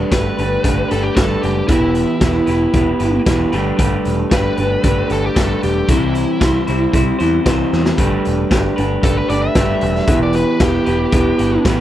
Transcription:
Already playing: G3 D4 G4 B4
0.11 G1 A3 D4 G4 B4, kick, snare, closed hi-hat
0.37 G1 D4 G4 B4, closed hi-hat
0.63 G1 A3 D4 G4 B4, kick, closed hi-hat
0.88 G1 D4 G4 A4 B4, closed hi-hat
1.02 G4
1.15 G1 G3 A3 D4 G4 A4 B4, kick, snare, closed hi-hat
1.43 F#1 G4, closed hi-hat
1.67 E1 E3 B3 E4 G4 B4, kick, closed hi-hat
1.95 closed hi-hat
2.20 E1 B3 E4 G4 B4, kick, snare, closed hi-hat
2.46 E1 E4 G4 B4, closed hi-hat
2.73 E1 B3 E4 G4 B4, kick, closed hi-hat
2.99 G1 E4 G4 B4, closed hi-hat
3.26 E1 E3 B3 E4 G4 B4, kick, snare, closed hi-hat
3.52 G1 G3 A3 D4 G4 B4, closed hi-hat
3.77 G1 G3 A3 D4 G4 B4, kick, closed hi-hat
4.05 E1, closed hi-hat
4.30 G1 A3 D4 G4 B4, kick, snare, closed hi-hat
4.57 G1 D4 G4 B4, closed hi-hat
4.82 G1 A3 D4 G4 B4, kick, closed hi-hat
5.08 G1 D4 G4 A4 B4, closed hi-hat
5.26 G4
5.34 G1 G3 A3 D4 G4 A4 B4, kick, snare, closed hi-hat
5.63 E1 G4, closed hi-hat
5.88 C2 C3 E3 G3 C4 E4 C5, kick, closed hi-hat
6.15 closed hi-hat
6.40 C2 G3 C4 E4 C5, kick, snare, closed hi-hat
6.67 C2 G3 C4 E4 C5, closed hi-hat
6.92 C2 G3 C4 E4 C5, kick, closed hi-hat
7.19 E2 G3 C4 E4 C5, closed hi-hat
7.44 C2 C3 E3 G3 C4 E4 C5, kick, snare, closed hi-hat
7.73 E2, snare
7.85 snare
7.97 G1 G3 A3 D4 G4 B4, kick, closed hi-hat
8.25 E1, closed hi-hat
8.49 G1 A3 D4 G4 B4, kick, snare, closed hi-hat
8.76 G1 D4 G4 B4, closed hi-hat
9.02 G1 A3 D4 G4 A4 B4, kick, closed hi-hat
9.17 B4
9.28 G1 D4 G4 B4 D5, closed hi-hat
9.42 E5
9.55 G1 G3 A3 D4 G4 B4, kick, snare, closed hi-hat
9.81 E1, closed hi-hat
9.95 snare
10.07 E1 E3 B3 E4 G4 B4, kick, closed hi-hat
10.23 D5
10.33 B4, closed hi-hat
10.60 E1 B3 E4 G4 B4, kick, snare, closed hi-hat
10.86 E1 E4 G4 B4, closed hi-hat
11.12 E1 B3 E4 G4 B4, kick, closed hi-hat
11.38 G1 E4 G4 B4, closed hi-hat
11.64 A1 E3 B3 E4 G4 B4, kick, snare, closed hi-hat

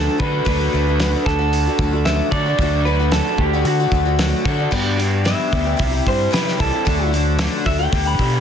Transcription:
Already playing: D3 F#3 A3 D4 F#4 A4
0.18 D3 F#3 A3 D4 F#4 A4 B4, kick
0.23 D3
0.45 D2 D3 F#3 A3 D4 F#4 B4, kick, open hi-hat
0.50 A4
0.72 D2 F#3 A3 D4 F#4
0.87 A3 D4 F#4
1.00 D3 F#3 A3 D4 F#4, snare, open hi-hat
1.13 A3 D4 F#4
1.26 D2 A4, kick, snare
1.39 A3 D4 F#4
1.53 open hi-hat
1.67 A3 D4 F#4
1.79 D2 F#3 A3 D4, kick
1.83 F#4
1.93 A3 D4 F#4
2.05 D3 F#3 A3 D4 F#4 E5, snare, open hi-hat
2.31 D3 F#3 A3 D4 F#4 A4 D5, kick
2.46 A3 D4 F#4
2.59 D2 D3 F#3 A3 D4 F#4 A4, kick, open hi-hat
2.85 F#3 A3 D4 F#4 B4
2.99 A3 D4 F#4
3.12 D3 F#3 A3 D4 F#4 A4, snare, open hi-hat
3.25 A3 D4 F#4
3.38 D2 G4, kick
3.53 A3 D4 F#4
3.65 D3 F#4, open hi-hat
3.80 A3 D4 F#4
3.92 D2 F#3 A3 D4 F#4, kick
4.05 A3 D4 F#4
4.19 D3 F#3 A3 D4 F#4, snare, open hi-hat
4.45 D3 F#3 A3 D4 F#4 A4, kick
4.58 A3 D4 F#4
4.71 G2 D3 G3 B3 D4 G4, kick, crash
4.97 G3 B3 D4 G4, open hi-hat
5.24 G2 D3 G3 B3 D4 G4 E5, snare, open hi-hat
5.51 D2 G3 B3 D4 G4, kick, open hi-hat
5.64 G3 B3 D4 G4
5.76 C2 C3 E3 G3 E4 G4, kick, open hi-hat
5.81 C3
5.91 G3 E4 G4
6.06 G2 G3 C5, kick, open hi-hat
6.31 C3 E3 G3 E4 G4 B4, snare, open hi-hat
6.48 snare
6.58 C2 E3 G3 E4 G4 A4, kick, open hi-hat
6.72 G3 E4 G4
6.85 D2 D3 F#3 A3 D4 F#4, kick, open hi-hat
7.13 F#3 A3 D4 F#4, open hi-hat
7.39 D3 F#3 A3 D4 F#4, snare, open hi-hat
7.65 D2 F#3 A3 D4 F#4 E5, kick, open hi-hat
7.79 A3 D4 F#4 G5
7.92 D2 D3 G3 B3 G4, kick, open hi-hat
8.05 G3 B3 G4 B5
8.19 B2 G3, kick, open hi-hat

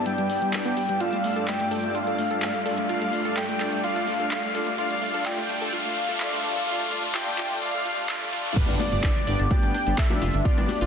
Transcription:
Already playing: G2 G3 B3 E4 D5 E6, riser
0.06 G3 B3 D4 G4 D5 G5, closed hi-hat, shaker
0.18 G3, closed hi-hat, shaker
0.29 B3 D4 G4 D5, open hi-hat, shaker
0.42 G3, closed hi-hat, shaker
0.53 G3, clap, closed hi-hat, shaker
0.65 B3 D4 G4 D5, closed hi-hat, shaker
0.77 G3, open hi-hat, shaker
0.89 G3, closed hi-hat, shaker
1.00 A3 D4 F4 D5 F5, closed hi-hat, shaker
1.13 A3, closed hi-hat, shaker
1.24 A3, open hi-hat, shaker
1.36 A3 D4 F4 A4 D5, closed hi-hat, shaker
1.47 A3 G5, clap, closed hi-hat, shaker
1.60 A3, closed hi-hat, shaker
1.71 A3 D4 F4 A4 D5, open hi-hat, shaker
1.83 A3, shaker
1.95 A3 D4 F4 D5 F5, closed hi-hat, shaker
2.07 A3, closed hi-hat, shaker
2.18 A3, open hi-hat, shaker
2.31 A3 D4 F4 A4 D5, closed hi-hat, shaker
2.42 A3, clap, closed hi-hat, shaker
2.54 A3, closed hi-hat, shaker
2.65 A3 D4 F4 A4 D5, open hi-hat, shaker
2.78 A3, closed hi-hat, shaker
2.89 A3 D4 F4 D5 F5, closed hi-hat, shaker
3.01 A3, closed hi-hat, shaker
3.13 A3, open hi-hat, shaker
3.25 A3 D4 F4 A4 D5, closed hi-hat, shaker
3.36 A3 G5, clap, closed hi-hat, shaker
3.49 A3, closed hi-hat, shaker
3.60 A3 D4 F4 A4 D5, clap, open hi-hat, shaker
3.72 A3, closed hi-hat, shaker
3.84 A3 D4 F4 D5 F5, closed hi-hat, shaker
3.96 A3, closed hi-hat, shaker
4.07 A3, open hi-hat, shaker
4.20 A3 D4 F4 A4 D5, closed hi-hat, shaker
4.31 A3, clap, closed hi-hat, shaker
4.43 A3, closed hi-hat, shaker
4.55 A3 D4 F4 A4 D5, open hi-hat, shaker
4.67 A3, closed hi-hat, shaker
4.78 A3 D4 F4 D5 F5, closed hi-hat, shaker
4.91 A3, closed hi-hat, shaker
5.02 A3, open hi-hat, shaker
5.14 A3 D4 F4 A4 D5, closed hi-hat, shaker
5.25 A3 D4 F4 D5 G5, clap, closed hi-hat, shaker
5.38 A3, closed hi-hat, shaker
5.49 A3, open hi-hat, shaker
5.61 A3 D4 F4 A4 D5, closed hi-hat, shaker
5.73 A3 D4 F4 D5 F5, closed hi-hat, shaker
5.85 A3, closed hi-hat, shaker
5.96 A3, open hi-hat, shaker
6.09 A3 D4 F4 A4 D5, closed hi-hat, shaker
6.20 A3 D4 F4 D5, clap, closed hi-hat, shaker
6.32 A3, closed hi-hat, shaker
6.44 A3, open hi-hat, shaker
6.56 A3 D4 F4 A4 D5, closed hi-hat, shaker
6.67 A3 D4 F4 D5 F5, closed hi-hat, shaker
6.80 A3, closed hi-hat, shaker
6.91 A3 D4 F4 D5, open hi-hat, shaker
7.03 A3, closed hi-hat, shaker
7.15 A3 D4 F4 D5 G5, clap, closed hi-hat, shaker
7.27 A3, closed hi-hat, shaker
7.38 A3 D4 F4 D5, clap, open hi-hat, shaker
7.50 A3, closed hi-hat, shaker
7.62 A3 D4 F4 D5 F5, closed hi-hat, swell, shaker
7.74 A3, closed hi-hat, shaker
7.85 A3 D4 F4 D5, open hi-hat, shaker
7.98 A3, closed hi-hat, shaker
8.09 A3 D4 F4 D5, clap, closed hi-hat, shaker
8.21 A3, closed hi-hat, shaker
8.33 A3 D4 F4 D5, open hi-hat, shaker
8.45 A3, closed hi-hat, shaker
8.56 G3 B3 D4 G4 B4 D5, kick, closed hi-hat, crash, impact, shaker
8.69 G1 D4, closed hi-hat, high bongo, shaker
8.79 D4 D5, open hi-hat, high conga, shaker
8.92 G1 B3 D4 G4 D5, closed hi-hat, shaker
9.03 D4, kick, clap, closed hi-hat, high bongo, shaker
9.16 D4, closed hi-hat, shaker
9.27 G1 B3 D4 G4 D5, open hi-hat, high bongo, shaker
9.39 G1 D4, closed hi-hat, shaker
9.51 B3 D4 G4 D5 G5, kick, closed hi-hat, high bongo, high conga, shaker
9.63 G1, closed hi-hat, shaker
9.74 D4, open hi-hat, high bongo, shaker
9.87 G1 B3 D4 G4 D5, closed hi-hat, shaker
9.98 A4 E5, kick, clap, closed hi-hat, shaker
10.10 B3 D4 G4 D5, closed hi-hat, high bongo, high conga, low conga, shaker
10.22 F1 F4, open hi-hat, shaker
10.33 G1 D4, closed hi-hat, high bongo, shaker
10.45 B3 D4 F4 G4 D5, kick, closed hi-hat, shaker
10.58 G1 D4, closed hi-hat, high bongo, shaker
10.68 D4, open hi-hat, high conga, shaker
10.81 G1 B3 D4 F4 G4 D5, closed hi-hat, high bongo, shaker

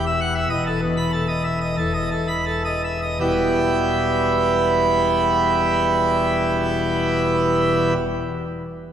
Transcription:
Already playing: E1 E2
0.07 E5
0.21 F#5
0.35 E5
0.50 E1 E2 D#5
0.66 A4
0.81 B2
0.97 B5
1.12 A4
1.28 D#5
1.44 E5
1.61 D#5
1.77 E1 E2 A4
1.94 D#5
2.11 A4
2.28 B5
2.46 A4
2.65 D#5
2.84 E5
3.02 D#5
3.20 E1 E2 B2 G3 B3 E4 G4

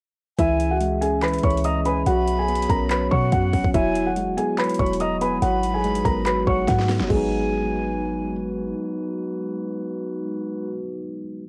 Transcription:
0.38 C#2 E3 C#4 E4 G#4 E5 G#5, kick, closed hi-hat
0.60 closed hi-hat
0.71 F#4 F#5
0.81 G#3, closed hi-hat
1.01 C#4 G#4 G#5, closed hi-hat
1.22 E3 B4 B5, clap, closed hi-hat
1.28 closed hi-hat
1.34 closed hi-hat
1.39 closed hi-hat
1.43 C#2 E3 C#5 B5 C#6, kick, closed hi-hat
1.50 closed hi-hat
1.57 closed hi-hat
1.64 D#5 A#5 D#6, closed hi-hat
1.85 C#4 B4 G#5 B5, closed hi-hat
2.06 B1 F#3 B3 F#4 C#5 F#5 B5, closed hi-hat
2.28 closed hi-hat
2.39 G#4 G#5
2.48 B3, closed hi-hat
2.55 closed hi-hat
2.62 closed hi-hat
2.69 B1 C#4 A#4 A#5, kick, closed hi-hat
2.90 F#3 B4 B5, clap, closed hi-hat
3.11 B2 F#3 C#5 F#5 C#6, kick
3.32 F#2 F#4 F#5, kick, closed hi-hat
3.53 B1 C#4, kick, open hi-hat
3.64 B1, kick
3.74 E1 F#3 G#3 E4 F#4 E5 G#5, kick, closed hi-hat
3.95 closed hi-hat
4.07 F#4 F#5
4.16 F#1 G#3, closed hi-hat
4.27 E1
4.37 B3 G#4 G#5, closed hi-hat
4.58 F#3 B4 B5, clap, closed hi-hat
4.64 closed hi-hat
4.69 closed hi-hat
4.74 closed hi-hat
4.79 E1 F#3 C#5 B5 C#6, kick
4.86 closed hi-hat
4.93 closed hi-hat
5.00 D#5 A#5 D#6, closed hi-hat
5.21 B3 B4 G#5 B5, closed hi-hat
5.42 G#1 F#3 D#4 F#4 B4 F#5 B5, closed hi-hat
5.63 closed hi-hat
5.74 G#4 G#5
5.84 G#3, closed hi-hat
5.95 closed hi-hat
6.05 G#1 B3 A#4 A#5, kick, closed hi-hat
6.26 F#3 B4 B5, clap, closed hi-hat
6.47 G#1 F#3 C#5 F#5 C#6, kick
6.68 G#2 F#4 F#5, kick, snare, closed hi-hat
6.79 snare
6.89 B3, snare, open hi-hat
7.00 F#1 F#3, snare
7.08 G#1 G#3 D#4 F#4 G#4 B4 G#5, kick, crash
7.12 B3
7.16 D#4

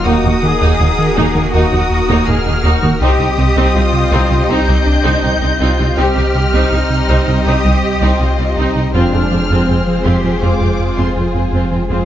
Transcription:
0.05 D#1 D#2 A#3 D#4 F#4 A#4 D#6
0.24 D#2 A#3 D#4
0.42 D#2 D#3 A#3 D#4 G#4
0.61 D#2 A#3 D#4
0.80 D#2 A#3 D#4
0.99 D#3
1.17 D#2 A#3 D#4
1.35 D#2 D#3 A#3 D#4
1.53 D#2 A#3 D#4 F#4 D#6
1.72 D#2 A#3 D#4
1.90 D#2
2.09 D#2 A#3 D#4
2.27 D#2 A#3 D#4 G#4 F6
2.46 D#2 A#3 D#4
2.64 D#2 A#3 D#4 F#4
2.83 D#2 D#3 A#3 D#4
3.00 C2 G3 C4 D#4 G4 C5 D#5 D#6
3.19 C2 C4 D#4
3.38 C2 C3 C4 D#4
3.56 C2 C4 D#4
3.74 C2 C4 D#4 F4
3.93 C3
4.11 C2 C4 D#4
4.31 C2 C3 C4 D#4
4.49 C2 C4 D#4 G4 G6
4.68 C2 C4 D#4
4.86 C2 D4
5.05 C2 C4 D#4
5.23 C2 C4 D#4
5.42 C2 C4 D#4
5.60 C2 C4 D#4 F4
5.79 C2 C3 C4 D#4
5.97 C2 G3 C4 D#4 G4 C5 D#5 F6
6.15 C2 C4 D#4
6.35 C2 C3 C4 D#4
6.53 C2 C4 D#4
6.72 C2 C4 D#4
6.90 C3
7.08 C2 C4 D#4
7.27 C2 C3 C4 D#4
7.46 C2 C4 D#4 G4 D#6
7.65 C2 C4 D#4
7.84 C2
8.01 C2 C4 D#4
8.20 C2 C4 D#4 F4
8.38 C2 C4 D#4
8.57 C2 C4 D#4
8.75 C2 C3 C4 D#4
8.94 F1 F2 G#3 C4 D4 F4 G#4 C5 F6
9.13 F2 C4 F4
9.31 F2 F3 C4 F4
9.50 F2 C4 F4
9.68 F2 C4 F4
9.87 F3
10.05 F2 C4 F4 G4 C6
10.23 F2 F3 C4 F4
10.41 F2 C4 F4 D6
10.60 F2 C4 F4
10.79 F2
10.97 F2 C4 F4 C6
11.15 F2 C4 F4 G#5
11.34 F2 C4 F4
11.53 F2 C4 F4
11.71 F2 F3 C4 F4 G5
11.89 F1 F2 G#3 C4 F4 G#4 C5 G#5

